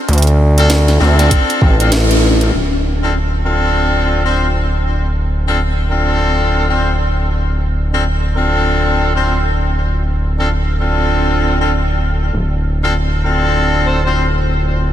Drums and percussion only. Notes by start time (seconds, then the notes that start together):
0.09 closed hi-hat
0.13 closed hi-hat
0.18 closed hi-hat
0.22 closed hi-hat
0.27 closed hi-hat
0.58 closed hi-hat
0.70 snare, closed hi-hat
0.88 snare, closed hi-hat
1.00 snare
1.19 snare, closed hi-hat
1.31 kick, closed hi-hat
1.50 closed hi-hat
1.61 kick
1.80 closed hi-hat
1.92 snare, closed hi-hat
2.11 closed hi-hat
2.41 closed hi-hat